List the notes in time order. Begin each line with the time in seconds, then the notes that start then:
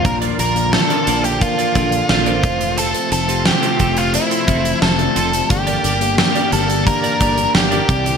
Already playing: F3
0.04 A#1 A#2 D3 A#3 D4 F4 A#4 D5, muted clean electric guitar stroke, kick, closed hi-hat
0.22 F4 A#4 D5, closed hi-hat
0.38 A#1 F4 A#4 D5, closed hi-hat
0.56 A#3 D4 F4 D5, muted clean electric guitar stroke, closed hi-hat
0.73 A4, muted clean electric guitar stroke, snare
0.90 A#3 D4 F4 A#4 D5, closed hi-hat
1.07 A#1 F4 A#4 D5, closed hi-hat
1.24 G4, muted clean electric guitar stroke, closed hi-hat
1.41 A#3 D4 F4 A#4, muted clean electric guitar stroke, kick, closed hi-hat
1.58 F4 A#4 D5, closed hi-hat
1.75 A#1 A#3 D4 F4 A4 A#4 D5, kick, closed hi-hat
1.92 muted clean electric guitar stroke, closed hi-hat
2.09 A#1 F4, muted clean electric guitar stroke, snare
2.26 A#3 D4 F4 A#4 C5 D5, closed hi-hat
2.43 F1 C3 A3 C4 F4 C5, muted clean electric guitar stroke, kick, closed hi-hat
2.60 muted clean electric guitar stroke, closed hi-hat
2.77 C4 F4 A4, closed hi-hat
2.94 muted clean electric guitar stroke, closed hi-hat
3.11 F1 A4, muted clean electric guitar stroke, closed hi-hat
3.28 A3 C4 F4 G4 A4, closed hi-hat
3.45 G4, muted clean electric guitar stroke, snare
3.62 A3 C4 F4 A4, closed hi-hat
3.79 F1 C4 F4 A4, kick, closed hi-hat
3.97 F4, muted clean electric guitar stroke, closed hi-hat
4.13 F3 A3 C4 E4 C5, muted clean electric guitar stroke, closed hi-hat
4.30 C4 F4 A4, closed hi-hat
4.47 F1 F3 A3 C4 F4 A4 C5, kick, closed hi-hat
4.64 muted clean electric guitar stroke, closed hi-hat
4.82 F1 A4, snare
4.98 A3 C4 F4 D5, muted clean electric guitar stroke, closed hi-hat
5.16 F1 C4 F4 A4, closed hi-hat
5.33 muted clean electric guitar stroke, closed hi-hat
5.50 G1 G2 D3 A#3 D4 G4 D5, muted clean electric guitar stroke, kick, closed hi-hat
5.67 G4 A#4 D5, closed hi-hat
5.84 G1 G4 A#4 D5, closed hi-hat
6.01 A#3 D4 G4 A#4, muted clean electric guitar stroke, closed hi-hat
6.18 G4, muted clean electric guitar stroke, snare
6.35 A#3 D4 G4 A#4 D5, closed hi-hat
6.52 G1 G4 A4 A#4 D5, closed hi-hat
6.69 muted clean electric guitar stroke, closed hi-hat
6.86 A#3 D4 G4 A#4 F5, muted clean electric guitar stroke, kick, closed hi-hat
7.03 G4 A#4 D5, closed hi-hat
7.20 G1 A#3 D4 G4 A#4 D5, kick, closed hi-hat
7.37 muted clean electric guitar stroke, closed hi-hat
7.54 G1 G4, muted clean electric guitar stroke, snare
7.71 A#3 D4 G4 A#4 D5, closed hi-hat
7.88 C2 C3 C4 E4 G4 D5, muted clean electric guitar stroke, kick, closed hi-hat
8.05 muted clean electric guitar stroke, closed hi-hat